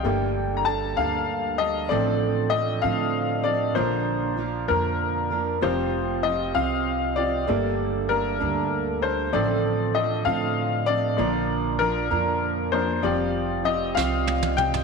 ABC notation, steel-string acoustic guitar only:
X:1
M:6/8
L:1/8
Q:3/8=65
K:Gm
V:1 name="Steel-string acoustic guitar"
[G,,D,G,B,DA]2 [G,B,DA] [G,,D,G,B,DA]2 [G,B,DA] | [A,,D,F,CDA]2 [F,CDA] [A,,D,F,CDA]2 [F,CDA] | [B,,D,F,B,DB]2 [F,B,DB] [B,,D,F,B,DB]2 [F,B,DB] | [F,CFG]2 [F,CFG] [F,CFG]2 [CFG] |
[G,,D,G,B,DA]2 [G,B,DA] [G,,D,G,B,DA]2 [G,B,DA] | [A,,D,F,CDA]2 [F,CDA] [A,,D,F,CDA]2 [F,CDA] | [B,,D,F,B,DB]2 [F,B,DB] [B,,D,F,B,DB]2 [F,B,DB] | [F,CFG]2 [F,CFG] [F,CFG]2 [CFG] |]